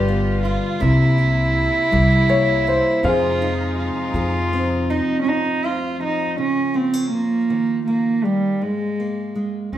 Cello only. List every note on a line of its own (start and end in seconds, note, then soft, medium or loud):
0.00 0.42 G4 loud
0.42 0.82 F4 medium
0.81 3.05 E4 loud
3.03 3.77 F4 medium
3.78 4.91 F4 medium
4.89 5.20 D#4 medium
5.21 5.30 C#4 medium
5.28 5.67 D#4 medium
5.66 6.02 F4 medium
6.03 6.37 D#4 medium
6.40 6.77 C#4 medium
6.75 7.10 C4 medium
7.11 7.82 A#3 medium
7.86 8.25 A#3 medium
8.23 8.63 G3 medium
8.62 9.45 G#3 medium
9.75 9.78 C#4 medium